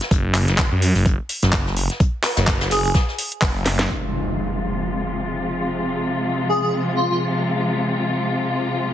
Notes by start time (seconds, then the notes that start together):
0.01 snare, closed hi-hat
0.11 F#1, kick, closed hi-hat
0.34 clap, closed hi-hat, open hi-hat
0.48 F#1, snare, closed hi-hat
0.58 kick, snare, clap, closed hi-hat
0.72 F#2
0.82 closed hi-hat, open hi-hat
0.95 F#1, snare, open hi-hat
1.06 kick, closed hi-hat
1.29 closed hi-hat, open hi-hat
1.43 F#1, snare, closed hi-hat
1.53 kick, snare, clap, closed hi-hat
1.67 snare
1.77 closed hi-hat, open hi-hat
1.90 snare, closed hi-hat
2.00 kick, closed hi-hat
2.24 snare, clap, closed hi-hat, open hi-hat
2.37 F#1, snare, closed hi-hat
2.47 kick, snare, clap, closed hi-hat
2.61 F#1, snare, closed hi-hat
2.71 G#4, snare, closed hi-hat, open hi-hat
2.85 G#4, open hi-hat
2.94 kick, snare, closed hi-hat
3.08 snare
3.18 closed hi-hat, open hi-hat
3.32 closed hi-hat
3.42 F#1, kick, snare, clap, closed hi-hat, open hi-hat
3.65 F#1, snare, closed hi-hat, open hi-hat
3.79 snare, closed hi-hat
3.89 C3 F3 G#3 F4, impact
6.49 G#4
6.63 G#4
6.96 F4
7.10 F4